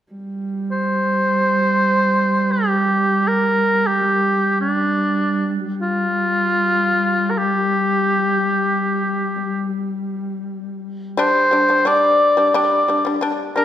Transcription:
0.13 horsehead fiddle G3
0.72 oboe C5
2.52 oboe G4
3.28 oboe A#4
3.87 oboe G4
4.61 oboe D4
5.66 horsehead fiddle G3
5.82 oboe F4
7.30 oboe A#4
7.38 oboe G4
11.17 shamisen G3 D4, oboe C5
11.51 shamisen G3 D4
11.69 shamisen G3 D4
11.85 shamisen G3 D4, oboe D5
12.37 shamisen G3 D4
12.54 shamisen G3 D4, oboe D5
12.88 shamisen G3 D4
13.05 shamisen G3 D4
13.21 shamisen G3 D4
13.56 shamisen G3 D4, oboe A#4

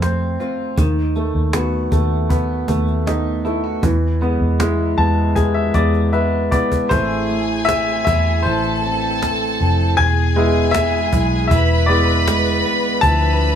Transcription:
Already playing: fingered electric bass F2, clean electric guitar F2 A3 F4, grand piano F3 C4 A4
0.02 clean electric guitar C4, grand piano C5, cajon slap
0.40 grand piano C4, clean electric guitar F4, cajon slap
0.78 fingered electric bass D#2, clean electric guitar D#3, grand piano D#3, cajon bass
1.15 clean electric guitar A3, grand piano A3, cajon slap
1.35 fingered electric bass D#2
1.53 grand piano B3, clean electric guitar F#4, cajon slap
1.73 cajon slap
1.92 fingered electric bass D#2, clean electric guitar A3, grand piano A3, cajon bass
2.29 grand piano B3, clean electric guitar B3, cajon bass, cajon slap
2.68 fingered electric bass D#2, grand piano A3, clean electric guitar A3, cajon bass
2.87 cajon slap
3.06 clean electric guitar B3, grand piano D#4, cajon slap
3.45 grand piano A3, clean electric guitar E4, cajon slap
3.64 clean electric guitar F#4
3.83 clean electric guitar E2, fingered electric bass E2, grand piano E3, cajon bass
4.21 clean electric guitar G#3, grand piano B3, cajon slap
4.41 fingered electric bass E2
4.60 grand piano G#3, clean electric guitar E4, cajon slap
4.80 cajon slap
4.97 fingered electric bass E2, clean electric guitar G#3, grand piano B3 A5, cajon slap
5.36 clean electric guitar B3, grand piano G#4 G#5, cajon bass, cajon slap
5.54 grand piano E5
5.74 fingered electric bass E2, clean electric guitar G#3, grand piano B3 D5, cajon slap
5.94 cajon slap
6.13 clean electric guitar B3, grand piano B4 E5, cajon slap
6.51 grand piano B3 D5, clean electric guitar E4, cajon bass
6.72 cajon bass
6.89 fingered electric bass A1, clean electric guitar A2, grand piano A3 C4 E4 C5, violin section G#4 G#5, cajon bass
7.29 clean electric guitar A3, cajon slap
7.65 grand piano E5, cajon slap
7.69 clean electric guitar C4
7.88 cajon slap
8.05 fingered electric bass E2, clean electric guitar E4, grand piano E5, cajon bass
8.42 fingered electric bass A1, clean electric guitar E3, violin section A4 A5, grand piano C5, cajon slap
8.83 clean electric guitar C4, cajon slap
9.22 clean electric guitar A3, cajon slap
9.60 fingered electric bass F1, clean electric guitar C4, cajon slap
9.97 fingered electric bass E1, clean electric guitar E2, violin section G#4 G#5, grand piano G#5, cajon slap
10.36 grand piano G#3 B3 E4, clean electric guitar G#3, cajon slap
10.71 clean electric guitar B3, grand piano E5, cajon slap
10.94 cajon slap
11.12 fingered electric bass B1, clean electric guitar E4, cajon bass
11.47 fingered electric bass E1, clean electric guitar E3, violin section B4, grand piano E5, cajon bass
11.52 violin section B5
11.86 grand piano G#3 B3 E4 D5, clean electric guitar B3, cajon slap
12.27 clean electric guitar G#3, cajon slap
12.65 clean electric guitar B3, cajon slap
13.01 fingered electric bass D2, clean electric guitar D3, grand piano F3 D4 E4 A5, violin section B4 B5, cajon bass
13.41 clean electric guitar A3, cajon slap

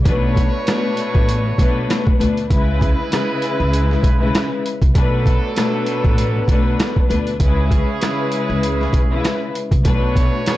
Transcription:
0.04 upright bass B1, string section B2 A3 D4 B4, trumpet section A3 F#4 C#5, kick, closed hi-hat
0.36 kick, closed hi-hat
0.67 string section B2 A3 D4 B4, cross-stick, snare, closed hi-hat
0.97 closed hi-hat
1.15 upright bass A1, kick
1.29 closed hi-hat
1.58 upright bass B1, string section B2 A3 D4 B4, kick, closed hi-hat
1.90 cross-stick, snare, closed hi-hat
2.07 kick
2.18 upright bass D2, string section B2 A3 D4 B4, closed hi-hat
2.37 closed hi-hat
2.50 upright bass C#2, string section C#3 G#3 E4 B4, trumpet section G#3 E4 B4, kick, closed hi-hat
2.81 kick, closed hi-hat
3.11 string section C#3 G#3 E4 B4, cross-stick, snare, closed hi-hat
3.42 closed hi-hat
3.60 upright bass C#2
3.73 closed hi-hat
3.91 snare
4.03 upright bass B1, kick, closed hi-hat
4.20 string section C#3 G#3 E4 B4
4.35 cross-stick, snare, closed hi-hat
4.66 closed hi-hat
4.82 upright bass C2, kick, closed hi-hat
4.95 upright bass B1, string section B2 A3 D4 B4, trumpet section F#3 D4 A4, kick, closed hi-hat
5.26 kick, closed hi-hat
5.56 string section B2 A3 D4 B4, cross-stick, snare, closed hi-hat
5.86 closed hi-hat
6.04 upright bass A1, kick
6.18 closed hi-hat
6.47 upright bass B1, string section B2 A3 D4 B4, kick, closed hi-hat
6.80 cross-stick, snare, closed hi-hat
6.96 kick
7.08 upright bass D2, string section B2 A3 D4 B4, closed hi-hat
7.27 closed hi-hat
7.40 upright bass C#2, string section C#3 G#3 E4 B4, trumpet section C#4 G#4, kick, closed hi-hat
7.71 kick, closed hi-hat
8.01 string section C#3 G#3 E4 B4, cross-stick, snare, closed hi-hat
8.32 closed hi-hat
8.50 upright bass C#2
8.63 closed hi-hat
8.81 snare
8.93 upright bass B1, kick, closed hi-hat
9.10 string section C#3 G#3 E4 B4
9.25 cross-stick, snare, closed hi-hat
9.55 closed hi-hat
9.71 upright bass C2, kick, closed hi-hat
9.84 upright bass B1, string section B2 A3 D4 B4, trumpet section A3 F#4 C#5, kick, closed hi-hat
10.16 kick, closed hi-hat
10.46 string section B2 A3 D4 B4, cross-stick, snare, closed hi-hat

